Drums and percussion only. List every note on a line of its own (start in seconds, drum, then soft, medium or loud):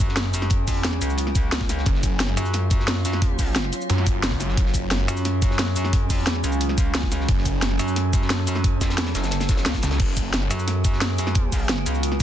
0.08 snare medium
0.16 snare loud
0.16 closed hi-hat medium
0.16 closed hi-hat loud
0.33 closed hi-hat medium
0.33 cabasa medium
0.42 snare soft
0.42 closed hi-hat soft
0.50 kick loud
0.50 closed hi-hat loud
0.67 kick medium
0.67 closed hi-hat medium
0.67 open hi-hat medium
0.67 cabasa medium
0.84 snare loud
0.84 closed hi-hat loud
0.84 closed hi-hat medium
0.93 snare soft
1.01 closed hi-hat medium
1.01 cabasa medium
1.10 cabasa soft
1.18 closed hi-hat medium
1.27 snare soft
1.35 kick loud
1.35 closed hi-hat medium
1.35 cabasa medium
1.51 snare loud
1.51 closed hi-hat medium
1.51 closed hi-hat loud
1.61 kick medium
1.61 snare medium
1.69 snare soft
1.69 closed hi-hat medium
1.69 cabasa medium
1.77 snare soft
1.86 kick loud
1.86 closed hi-hat medium
1.95 snare soft
2.03 kick medium
2.03 closed hi-hat medium
2.03 cabasa medium
2.20 snare loud
2.20 closed hi-hat medium
2.29 snare soft
2.37 closed hi-hat medium
2.37 cabasa medium
2.46 closed hi-hat soft
2.46 cabasa soft
2.54 snare soft
2.54 closed hi-hat medium
2.70 kick loud
2.70 closed hi-hat medium
2.70 cabasa medium
2.79 snare soft
2.88 snare loud
2.88 closed hi-hat medium
3.05 closed hi-hat medium
3.05 cabasa medium
3.12 snare soft
3.12 closed hi-hat soft
3.22 kick loud
3.22 closed hi-hat medium
3.39 kick medium
3.39 closed hi-hat medium
3.39 open hi-hat medium
3.39 cabasa medium
3.55 snare loud
3.55 closed hi-hat medium
3.64 snare soft
3.72 closed hi-hat medium
3.72 cabasa medium
3.81 cabasa soft
3.90 closed hi-hat medium
3.98 snare soft
4.07 kick loud
4.07 closed hi-hat medium
4.07 cabasa medium
4.23 snare loud
4.23 closed hi-hat medium
4.31 kick medium
4.31 snare medium
4.40 snare soft
4.40 closed hi-hat medium
4.40 cabasa medium
4.48 snare soft
4.57 kick loud
4.57 closed hi-hat medium
4.66 snare soft
4.74 kick medium
4.74 closed hi-hat medium
4.74 cabasa medium
4.91 snare loud
4.91 closed hi-hat loud
4.91 closed hi-hat medium
5.00 snare soft
5.08 closed hi-hat medium
5.08 cabasa medium
5.17 closed hi-hat soft
5.17 cabasa soft
5.25 snare soft
5.25 closed hi-hat medium
5.42 kick loud
5.42 closed hi-hat medium
5.42 cabasa medium
5.51 snare medium
5.59 snare loud
5.59 closed hi-hat medium
5.76 closed hi-hat medium
5.76 cabasa medium
5.85 snare soft
5.85 closed hi-hat soft
5.93 kick loud
5.93 closed hi-hat loud
5.93 closed hi-hat medium
6.10 kick medium
6.10 closed hi-hat medium
6.10 open hi-hat medium
6.10 cabasa medium
6.27 snare loud
6.27 closed hi-hat medium
6.35 snare soft
6.44 closed hi-hat medium
6.44 cabasa medium
6.52 cabasa soft
6.61 closed hi-hat medium
6.69 snare soft
6.78 kick loud
6.78 closed hi-hat medium
6.78 cabasa medium
6.95 snare loud
6.95 closed hi-hat loud
7.03 kick medium
7.03 snare medium
7.12 snare soft
7.12 closed hi-hat medium
7.12 cabasa medium
7.20 snare soft
7.29 kick loud
7.29 closed hi-hat loud
7.29 closed hi-hat medium
7.38 snare soft
7.45 kick medium
7.45 closed hi-hat medium
7.45 cabasa medium
7.62 snare loud
7.62 closed hi-hat medium
7.62 closed hi-hat loud
7.71 snare soft
7.79 closed hi-hat medium
7.79 cabasa medium
7.88 closed hi-hat soft
7.88 cabasa soft
7.96 snare soft
7.96 closed hi-hat medium
8.13 kick loud
8.13 closed hi-hat medium
8.13 cabasa medium
8.22 snare soft
8.30 snare loud
8.30 closed hi-hat medium
8.30 closed hi-hat loud
8.47 closed hi-hat medium
8.47 cabasa medium
8.55 snare soft
8.55 closed hi-hat soft
8.64 kick loud
8.64 closed hi-hat loud
8.64 closed hi-hat medium
8.81 kick medium
8.81 snare loud
8.81 closed hi-hat medium
8.81 cabasa medium
8.90 snare loud
8.90 closed hi-hat medium
8.98 snare loud
8.98 closed hi-hat loud
8.98 closed hi-hat medium
9.06 snare loud
9.06 snare soft
9.06 closed hi-hat medium
9.15 snare loud
9.15 closed hi-hat medium
9.15 cabasa medium
9.23 snare loud
9.23 closed hi-hat medium
9.23 cabasa soft
9.31 snare loud
9.31 closed hi-hat medium
9.31 closed hi-hat loud
9.40 snare loud
9.40 snare soft
9.40 closed hi-hat medium
9.40 cabasa soft
9.49 kick loud
9.49 snare loud
9.49 closed hi-hat medium
9.49 cabasa medium
9.57 snare loud
9.57 closed hi-hat medium
9.65 snare loud
9.65 closed hi-hat medium
9.65 closed hi-hat loud
9.65 cabasa soft
9.74 kick medium
9.74 snare loud
9.74 closed hi-hat medium
9.82 snare loud
9.82 snare soft
9.82 closed hi-hat medium
9.82 cabasa medium
9.91 snare loud
9.91 closed hi-hat medium
10.00 kick loud
10.00 closed hi-hat medium
10.00 closed hi-hat loud
10.00 crash medium
10.08 snare soft
10.17 kick medium
10.17 closed hi-hat medium
10.17 cabasa medium
10.33 snare loud
10.33 closed hi-hat medium
10.33 closed hi-hat loud
10.42 snare soft
10.51 closed hi-hat medium
10.51 cabasa medium
10.59 closed hi-hat soft
10.59 cabasa soft
10.68 snare soft
10.68 closed hi-hat loud
10.68 closed hi-hat medium
10.84 kick loud
10.84 closed hi-hat medium
10.84 cabasa medium
10.93 snare soft
11.01 snare loud
11.01 closed hi-hat medium
11.01 closed hi-hat loud
11.18 closed hi-hat medium
11.18 cabasa medium
11.27 snare soft
11.27 closed hi-hat soft
11.35 kick loud
11.35 closed hi-hat medium
11.35 closed hi-hat loud
11.52 kick medium
11.52 closed hi-hat medium
11.52 open hi-hat medium
11.52 cabasa medium
11.69 snare loud
11.69 closed hi-hat loud
11.69 closed hi-hat medium
11.78 snare soft
11.86 closed hi-hat medium
11.86 cabasa medium
11.95 cabasa soft
12.03 closed hi-hat medium
12.12 snare soft